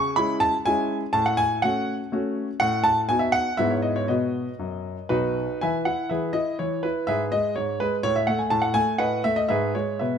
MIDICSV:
0, 0, Header, 1, 2, 480
1, 0, Start_track
1, 0, Key_signature, 4, "major"
1, 0, Tempo, 487409
1, 1130, Time_signature, 3, 2, 24, 8
1, 3535, Tempo, 507185
1, 5455, Tempo, 488202
1, 9940, End_track
2, 0, Start_track
2, 0, Title_t, "Grand piano"
2, 0, Program_c, 0, 0
2, 0, Note_on_c, 0, 49, 83
2, 0, Note_on_c, 0, 85, 123
2, 152, Note_off_c, 0, 49, 0
2, 159, Note_on_c, 0, 83, 106
2, 163, Note_off_c, 0, 85, 0
2, 164, Note_on_c, 0, 56, 54
2, 169, Note_on_c, 0, 61, 52
2, 177, Note_on_c, 0, 64, 63
2, 395, Note_on_c, 0, 81, 127
2, 405, Note_off_c, 0, 83, 0
2, 511, Note_off_c, 0, 56, 0
2, 514, Note_off_c, 0, 61, 0
2, 519, Note_off_c, 0, 64, 0
2, 544, Note_off_c, 0, 81, 0
2, 645, Note_on_c, 0, 80, 118
2, 656, Note_on_c, 0, 56, 63
2, 659, Note_on_c, 0, 61, 61
2, 661, Note_on_c, 0, 64, 60
2, 934, Note_off_c, 0, 80, 0
2, 999, Note_off_c, 0, 56, 0
2, 1001, Note_off_c, 0, 61, 0
2, 1003, Note_off_c, 0, 64, 0
2, 1110, Note_on_c, 0, 81, 120
2, 1120, Note_on_c, 0, 45, 75
2, 1239, Note_on_c, 0, 78, 88
2, 1240, Note_off_c, 0, 81, 0
2, 1352, Note_on_c, 0, 80, 127
2, 1365, Note_off_c, 0, 78, 0
2, 1591, Note_off_c, 0, 45, 0
2, 1598, Note_on_c, 0, 78, 96
2, 1601, Note_off_c, 0, 80, 0
2, 1612, Note_on_c, 0, 57, 51
2, 1612, Note_on_c, 0, 61, 54
2, 1619, Note_on_c, 0, 66, 56
2, 1888, Note_off_c, 0, 78, 0
2, 1955, Note_off_c, 0, 61, 0
2, 1956, Note_off_c, 0, 57, 0
2, 1960, Note_off_c, 0, 66, 0
2, 2089, Note_on_c, 0, 57, 57
2, 2095, Note_on_c, 0, 61, 58
2, 2101, Note_on_c, 0, 66, 62
2, 2434, Note_off_c, 0, 57, 0
2, 2438, Note_off_c, 0, 61, 0
2, 2442, Note_off_c, 0, 66, 0
2, 2558, Note_on_c, 0, 78, 110
2, 2564, Note_on_c, 0, 45, 75
2, 2792, Note_on_c, 0, 81, 122
2, 2803, Note_off_c, 0, 78, 0
2, 2942, Note_off_c, 0, 81, 0
2, 3032, Note_off_c, 0, 45, 0
2, 3039, Note_on_c, 0, 80, 113
2, 3047, Note_on_c, 0, 59, 51
2, 3052, Note_on_c, 0, 63, 47
2, 3057, Note_on_c, 0, 66, 58
2, 3145, Note_on_c, 0, 76, 86
2, 3165, Note_off_c, 0, 80, 0
2, 3272, Note_on_c, 0, 78, 116
2, 3279, Note_off_c, 0, 76, 0
2, 3397, Note_off_c, 0, 59, 0
2, 3401, Note_off_c, 0, 63, 0
2, 3404, Note_off_c, 0, 66, 0
2, 3519, Note_on_c, 0, 76, 97
2, 3525, Note_off_c, 0, 78, 0
2, 3526, Note_on_c, 0, 59, 52
2, 3533, Note_on_c, 0, 44, 75
2, 3536, Note_on_c, 0, 64, 59
2, 3543, Note_on_c, 0, 71, 48
2, 3641, Note_on_c, 0, 73, 71
2, 3645, Note_off_c, 0, 76, 0
2, 3757, Note_on_c, 0, 75, 78
2, 3765, Note_off_c, 0, 73, 0
2, 3883, Note_off_c, 0, 75, 0
2, 3884, Note_on_c, 0, 73, 84
2, 3968, Note_off_c, 0, 59, 0
2, 3973, Note_off_c, 0, 64, 0
2, 3976, Note_off_c, 0, 71, 0
2, 3995, Note_off_c, 0, 44, 0
2, 4001, Note_on_c, 0, 75, 76
2, 4007, Note_off_c, 0, 73, 0
2, 4007, Note_on_c, 0, 47, 65
2, 4011, Note_on_c, 0, 71, 50
2, 4014, Note_on_c, 0, 66, 48
2, 4344, Note_off_c, 0, 47, 0
2, 4395, Note_off_c, 0, 71, 0
2, 4397, Note_off_c, 0, 66, 0
2, 4484, Note_on_c, 0, 42, 57
2, 4824, Note_off_c, 0, 42, 0
2, 4958, Note_on_c, 0, 71, 91
2, 4960, Note_on_c, 0, 35, 60
2, 4962, Note_on_c, 0, 66, 73
2, 4963, Note_on_c, 0, 63, 70
2, 5210, Note_off_c, 0, 75, 0
2, 5301, Note_off_c, 0, 35, 0
2, 5414, Note_off_c, 0, 66, 0
2, 5415, Note_off_c, 0, 63, 0
2, 5446, Note_off_c, 0, 71, 0
2, 5451, Note_on_c, 0, 80, 92
2, 5463, Note_on_c, 0, 76, 73
2, 5465, Note_on_c, 0, 52, 57
2, 5465, Note_on_c, 0, 71, 69
2, 5597, Note_off_c, 0, 80, 0
2, 5684, Note_off_c, 0, 76, 0
2, 5685, Note_off_c, 0, 71, 0
2, 5686, Note_on_c, 0, 78, 87
2, 5690, Note_on_c, 0, 64, 53
2, 5694, Note_off_c, 0, 52, 0
2, 5924, Note_on_c, 0, 76, 70
2, 5926, Note_off_c, 0, 64, 0
2, 5932, Note_off_c, 0, 78, 0
2, 5935, Note_on_c, 0, 52, 51
2, 5936, Note_on_c, 0, 68, 54
2, 5937, Note_on_c, 0, 71, 61
2, 6146, Note_off_c, 0, 76, 0
2, 6154, Note_on_c, 0, 75, 96
2, 6160, Note_off_c, 0, 68, 0
2, 6160, Note_off_c, 0, 71, 0
2, 6164, Note_on_c, 0, 64, 51
2, 6169, Note_off_c, 0, 52, 0
2, 6381, Note_off_c, 0, 75, 0
2, 6403, Note_off_c, 0, 64, 0
2, 6410, Note_on_c, 0, 73, 83
2, 6416, Note_on_c, 0, 52, 58
2, 6645, Note_on_c, 0, 71, 82
2, 6650, Note_off_c, 0, 52, 0
2, 6654, Note_off_c, 0, 73, 0
2, 6658, Note_on_c, 0, 64, 51
2, 6882, Note_on_c, 0, 76, 97
2, 6883, Note_off_c, 0, 71, 0
2, 6889, Note_off_c, 0, 64, 0
2, 6891, Note_on_c, 0, 44, 57
2, 6894, Note_on_c, 0, 68, 71
2, 6897, Note_on_c, 0, 71, 74
2, 7029, Note_off_c, 0, 76, 0
2, 7116, Note_off_c, 0, 68, 0
2, 7117, Note_off_c, 0, 71, 0
2, 7124, Note_off_c, 0, 44, 0
2, 7125, Note_on_c, 0, 75, 99
2, 7126, Note_on_c, 0, 56, 59
2, 7341, Note_off_c, 0, 75, 0
2, 7358, Note_off_c, 0, 56, 0
2, 7360, Note_on_c, 0, 73, 84
2, 7371, Note_on_c, 0, 44, 51
2, 7575, Note_off_c, 0, 73, 0
2, 7597, Note_off_c, 0, 44, 0
2, 7601, Note_on_c, 0, 71, 94
2, 7605, Note_on_c, 0, 56, 61
2, 7743, Note_off_c, 0, 71, 0
2, 7830, Note_on_c, 0, 73, 115
2, 7832, Note_off_c, 0, 56, 0
2, 7837, Note_on_c, 0, 45, 68
2, 7951, Note_on_c, 0, 76, 87
2, 7952, Note_off_c, 0, 73, 0
2, 8062, Note_on_c, 0, 78, 90
2, 8067, Note_off_c, 0, 45, 0
2, 8069, Note_on_c, 0, 57, 66
2, 8073, Note_off_c, 0, 76, 0
2, 8176, Note_on_c, 0, 80, 74
2, 8187, Note_off_c, 0, 78, 0
2, 8292, Note_on_c, 0, 81, 108
2, 8299, Note_on_c, 0, 45, 71
2, 8303, Note_off_c, 0, 57, 0
2, 8304, Note_off_c, 0, 80, 0
2, 8403, Note_on_c, 0, 78, 82
2, 8422, Note_off_c, 0, 81, 0
2, 8523, Note_on_c, 0, 80, 121
2, 8532, Note_on_c, 0, 57, 66
2, 8537, Note_off_c, 0, 45, 0
2, 8537, Note_off_c, 0, 78, 0
2, 8765, Note_on_c, 0, 78, 92
2, 8768, Note_on_c, 0, 45, 53
2, 8772, Note_on_c, 0, 71, 77
2, 8773, Note_off_c, 0, 57, 0
2, 8775, Note_on_c, 0, 75, 73
2, 8777, Note_off_c, 0, 80, 0
2, 8993, Note_off_c, 0, 78, 0
2, 9004, Note_off_c, 0, 71, 0
2, 9006, Note_off_c, 0, 75, 0
2, 9012, Note_off_c, 0, 45, 0
2, 9016, Note_on_c, 0, 76, 102
2, 9022, Note_on_c, 0, 57, 65
2, 9136, Note_on_c, 0, 75, 99
2, 9144, Note_off_c, 0, 76, 0
2, 9257, Note_on_c, 0, 76, 90
2, 9261, Note_off_c, 0, 57, 0
2, 9265, Note_off_c, 0, 75, 0
2, 9269, Note_on_c, 0, 44, 69
2, 9273, Note_on_c, 0, 71, 75
2, 9274, Note_on_c, 0, 68, 77
2, 9485, Note_off_c, 0, 76, 0
2, 9501, Note_off_c, 0, 71, 0
2, 9502, Note_off_c, 0, 68, 0
2, 9509, Note_off_c, 0, 44, 0
2, 9515, Note_on_c, 0, 73, 82
2, 9521, Note_on_c, 0, 56, 52
2, 9757, Note_on_c, 0, 76, 73
2, 9761, Note_off_c, 0, 56, 0
2, 9765, Note_off_c, 0, 73, 0
2, 9771, Note_on_c, 0, 47, 60
2, 9773, Note_on_c, 0, 71, 60
2, 9940, Note_off_c, 0, 47, 0
2, 9940, Note_off_c, 0, 71, 0
2, 9940, Note_off_c, 0, 76, 0
2, 9940, End_track
0, 0, End_of_file